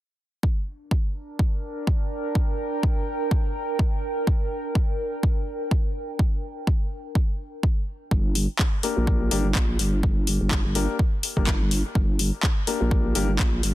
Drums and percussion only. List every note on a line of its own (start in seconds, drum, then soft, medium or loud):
0.43 kick loud
0.91 kick loud
1.39 kick loud
1.87 kick loud
2.35 kick loud
2.83 kick loud
3.31 kick loud
3.79 kick loud
4.27 kick loud
4.75 kick loud
5.23 kick loud
5.71 kick loud
6.19 kick loud
6.67 kick loud
7.15 kick loud
7.63 kick loud
8.11 kick loud
8.35 open hi-hat loud
8.59 kick loud
8.59 clap loud
8.83 open hi-hat loud
9.07 kick loud
9.31 open hi-hat loud
9.55 kick loud
9.55 clap loud
9.79 open hi-hat loud
10.03 kick loud
10.27 open hi-hat loud
10.51 kick loud
10.51 clap loud
10.75 open hi-hat loud
10.99 kick loud
11.23 open hi-hat loud
11.37 kick medium
11.47 kick loud
11.47 clap loud
11.71 open hi-hat loud
11.95 kick loud
12.19 open hi-hat loud
12.43 kick loud
12.43 clap loud
12.67 open hi-hat loud
12.91 kick loud
13.15 open hi-hat loud
13.39 kick loud
13.39 clap loud
13.63 open hi-hat loud